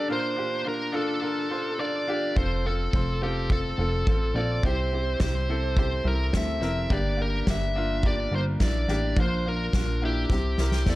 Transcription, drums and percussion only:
2.37 kick medium
2.93 kick medium
3.50 kick medium
4.07 kick medium
4.63 kick loud
5.20 kick medium
5.20 snare loud
5.77 kick loud
6.33 kick medium
6.33 snare medium
6.62 snare soft
6.90 kick loud
7.47 kick medium
7.47 snare loud
8.03 kick loud
8.60 kick medium
8.60 snare medium
8.88 snare soft
9.17 kick loud
9.73 kick medium
9.73 snare medium
10.30 kick loud
10.30 snare soft
10.58 snare medium
10.72 snare soft
10.86 kick medium
10.86 snare medium

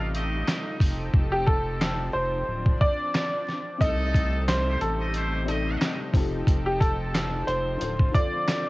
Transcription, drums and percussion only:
0.15 closed hi-hat medium
0.48 snare loud
0.48 clap medium
0.48 closed hi-hat medium
0.80 kick loud
0.80 open hi-hat medium
1.14 kick loud
1.48 kick loud
1.81 snare loud
1.81 clap medium
2.66 kick medium
2.81 kick loud
3.15 snare loud
3.15 clap medium
3.48 snare soft
3.81 kick loud
3.81 closed hi-hat medium
4.14 kick loud
4.14 closed hi-hat medium
4.48 snare loud
4.48 clap medium
4.48 closed hi-hat loud
4.81 closed hi-hat medium
5.14 closed hi-hat medium
5.48 closed hi-hat medium
5.82 snare loud
5.82 clap medium
5.82 closed hi-hat loud
6.14 kick loud
6.14 open hi-hat medium
6.47 kick loud
6.47 closed hi-hat loud
6.81 kick loud
6.81 closed hi-hat medium
7.15 snare loud
7.15 clap medium
7.15 closed hi-hat loud
7.48 closed hi-hat medium
7.81 closed hi-hat loud
7.99 kick medium
8.14 kick loud
8.14 closed hi-hat medium
8.48 snare loud
8.48 clap medium
8.48 closed hi-hat medium

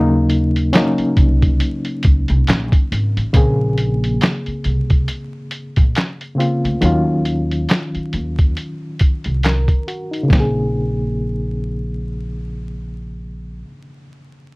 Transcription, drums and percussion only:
0.30 closed hi-hat medium
0.56 closed hi-hat soft
0.73 snare loud
0.73 clap medium
0.73 closed hi-hat medium
0.98 closed hi-hat soft
1.17 kick medium
1.17 closed hi-hat medium
1.42 kick medium
1.42 closed hi-hat soft
1.60 closed hi-hat medium
1.85 closed hi-hat soft
2.03 kick loud
2.03 closed hi-hat medium
2.28 closed hi-hat soft
2.47 snare loud
2.47 clap medium
2.47 closed hi-hat medium
2.72 kick medium
2.72 closed hi-hat soft
2.92 closed hi-hat medium
3.17 closed hi-hat soft
3.34 kick loud
3.34 closed hi-hat medium
3.78 closed hi-hat medium
4.04 closed hi-hat soft
4.21 snare loud
4.21 clap medium
4.21 closed hi-hat medium
4.46 closed hi-hat soft
4.64 closed hi-hat medium
4.90 kick medium
4.90 closed hi-hat soft
5.08 closed hi-hat medium
5.51 closed hi-hat medium
5.76 kick medium
5.76 closed hi-hat soft
5.95 snare medium
5.95 clap medium
5.95 closed hi-hat medium
6.21 closed hi-hat soft
6.40 closed hi-hat medium
6.65 closed hi-hat soft
6.82 closed hi-hat medium
7.25 closed hi-hat medium
7.51 closed hi-hat soft
7.69 snare loud
7.69 clap medium
7.69 closed hi-hat medium
7.95 closed hi-hat soft
8.13 closed hi-hat medium
8.39 kick medium
8.39 closed hi-hat soft
8.57 closed hi-hat medium
8.99 kick medium
8.99 closed hi-hat medium
9.24 closed hi-hat soft
9.43 snare medium
9.43 clap medium
9.43 closed hi-hat medium
9.68 kick medium
9.68 closed hi-hat soft
9.88 closed hi-hat medium
10.13 closed hi-hat soft
10.30 kick loud
10.30 snare loud

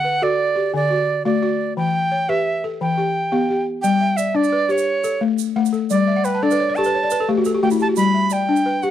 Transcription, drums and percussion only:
3.84 shaker medium
4.18 shaker medium
4.44 shaker soft
4.70 shaker soft
4.78 shaker medium
5.04 shaker medium
5.38 shaker medium
5.65 shaker medium
5.73 shaker soft
5.90 shaker medium
6.24 shaker medium
6.51 shaker soft
6.76 shaker soft
6.84 shaker soft
7.10 shaker medium
7.45 shaker medium
7.70 shaker soft
7.79 shaker soft
7.96 shaker medium
8.30 shaker medium
8.56 shaker soft
8.82 shaker soft

